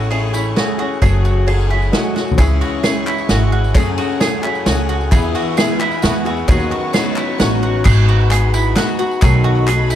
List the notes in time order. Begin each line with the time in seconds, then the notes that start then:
Already playing: A1 A2 A3 C#4 E4 F#4 G#4 C#5 G#5 C#6
0.10 A3 C#4 E4 G#4 C#5, ride
0.33 C#4 E4 G#4, tambourine
0.56 A3 C#4 E4 F#4 G#4 C#5, snare, ride
0.78 C#4 E4 F#4 G#4
1.01 F#1 F#2 C#3 F#3 A3 F#4 G#4 C#5 F#5 G#5, kick, ride, tambourine
1.25 F#4, tambourine
1.47 F#3 A3 F#4 G#4 C#5, ride
1.60 tambourine
1.69 F#3 A3 E4 F#4 G#4
1.82 tambourine
1.92 F#3 A3 F#4 G#4 D#5, snare, ride
2.16 F#3 A3 F#4 G#4, snare
2.27 tambourine
2.31 floor tom
2.38 C#2 C#3 E3 G#3 C#4 E4 G#4 C#5 E5 G#5 C#6, kick, clap, ride, tambourine
2.61 F#4, ride, tambourine
2.83 E3 G#3 C#4 E4 G#4 C#5, snare, ride, tambourine
3.07 E4, clap, tambourine
3.18 tambourine
3.28 G#1 E3 G#3 C#4 E4 F#4 G#4, snare, ride, tambourine
3.52 F#4
3.64 tambourine
3.74 F#1 F#2 C#3 F#3 A3 C#4 F#4 G#4 C#5 F#5, kick, clap, ride, tambourine
3.97 F#4, ride, tambourine
4.19 F#3 A3 C#4 F#4 G#4 C#5, snare, ride, tambourine
4.42 F#3 A3 C#4 E4 G#4, clap, tambourine
4.55 tambourine
4.66 C#2 F#3 A3 C#4 F#4 G#4 C#5, snare, ride, tambourine
4.89 F#4, tambourine
5.00 tambourine
5.11 E2 E3 B3 E4 G#4 E5 B5, kick, clap, ride, tambourine
5.35 F#4, ride, tambourine
5.56 E3 B3 E4 G#4 E5, snare, ride, tambourine
5.79 B3 E4 G#4, clap, tambourine
5.91 tambourine
6.02 E2 E3 B3 E4 F#4 G#4 F#5, snare, ride, tambourine
6.25 B3 E4 F#4 G#4, tambourine
6.37 tambourine
6.48 D#2 D#3 F#3 B3 C#4 D#4 F#4 G#4 B4 C#5 D#5 C#6, kick, clap, ride, tambourine
6.59 tambourine
6.71 F#4, clap, ride
6.93 F#3 B3 C#4 D#4 F#4 G#4 C#5, snare, clap, ride, tambourine
7.05 clap
7.16 E4, clap, tambourine
7.38 A1 F#3 B3 C#4 D#4 F#4 C#5, snare, ride, tambourine
7.63 F#4
7.84 G#1 G#3 B3 D#4 F#4 G#4 F#5 B5, kick, clap, crash, tambourine
7.97 clap
8.08 F#4, clap
8.20 clap
8.30 G#3 B3 D#4 F#4 G#4, clap, closed hi-hat
8.54 E4, tambourine
8.75 G#3 B3 D#4 F#4, snare, clap, closed hi-hat
8.88 clap, tambourine
8.98 B3 D#4 F#4, tambourine
9.11 tambourine
9.22 B1 B2 D#3 F#3 A3 D#4 F#4 G#4 A4 D#5 B5, kick, clap, closed hi-hat, tambourine
9.33 clap
9.44 F#4, clap
9.56 clap
9.67 F#3 A3 D#4 F#4 G#4, clap, closed hi-hat
9.90 E4, tambourine